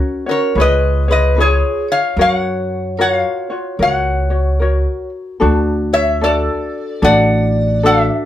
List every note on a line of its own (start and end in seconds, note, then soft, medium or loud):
0.00 0.26 C#4 medium
0.00 0.26 F#4 medium
0.00 0.26 A#4 medium
0.00 0.25 C#5 medium
0.26 0.56 C#4 soft
0.26 0.56 F#4 soft
0.26 0.55 A#4 medium
0.26 0.56 C#5 medium
0.31 0.59 C#5 medium
0.55 1.60 C#2 medium
0.55 1.07 F4 medium
0.55 1.07 G#4 medium
0.55 1.07 B4 medium
0.55 1.05 B4 medium
0.55 1.07 C#5 medium
0.60 1.05 B4 medium
0.60 1.11 D#5 medium
1.08 1.37 F4 soft
1.08 1.37 G#4 soft
1.08 1.36 B4 medium
1.08 1.37 C#5 medium
1.12 1.40 D#5 medium
1.36 2.18 F4 medium
1.36 1.84 G#4 medium
1.36 2.18 G#4 medium
1.36 2.17 B4 medium
1.36 2.19 C#5 medium
1.41 1.86 G#4 medium
1.41 1.90 C#5 medium
1.89 2.16 C#5 medium
1.89 2.17 C#5 medium
1.89 2.20 F5 medium
2.17 3.22 F#2 medium
2.17 2.99 F#4 medium
2.17 2.97 A#4 medium
2.17 2.94 C#5 medium
2.17 2.98 C#5 medium
2.21 2.96 C#5 medium
2.21 3.01 F#5 loud
2.97 3.50 F4 medium
2.97 3.49 F#4 medium
2.97 3.50 A#4 medium
2.97 3.75 C#5 medium
2.97 3.76 C#5 medium
2.97 3.49 C#5 medium
2.97 3.12 F#5 medium
3.12 3.82 F5 medium
3.50 3.80 F4 soft
3.50 3.79 F#4 soft
3.50 3.79 C#5 soft
3.79 4.84 C#2 medium
3.79 4.30 F#4 medium
3.79 4.30 A#4 soft
3.79 5.07 C#5 medium
3.79 4.29 C#5 medium
3.79 5.09 C#5 medium
3.79 5.09 F#5 medium
4.30 4.60 F#4 soft
4.30 4.60 C#5 soft
4.60 5.40 F#4 medium
4.60 5.41 A#4 medium
4.60 5.42 C#5 medium
5.40 6.47 D2 medium
5.40 6.21 D4 medium
5.40 6.23 F#4 medium
5.40 6.20 A4 medium
5.93 6.20 C#5 medium
5.93 6.23 E5 medium
6.21 7.02 D4 medium
6.21 7.03 F#4 medium
6.21 7.01 A4 medium
6.21 6.99 A4 medium
6.21 7.00 A4 medium
6.21 7.03 D5 medium
6.21 7.04 D5 medium
7.02 8.08 A1 loud
7.02 7.84 D4 medium
7.02 7.84 F#4 medium
7.02 7.82 A4 medium
7.02 7.80 D5 medium
7.02 7.85 D5 medium
7.02 7.81 D5 medium
7.02 7.87 F#5 loud
7.83 8.25 D4 medium
7.83 8.25 F#4 medium
7.83 8.25 A4 medium
7.83 8.25 D5 medium
7.83 8.25 E5 medium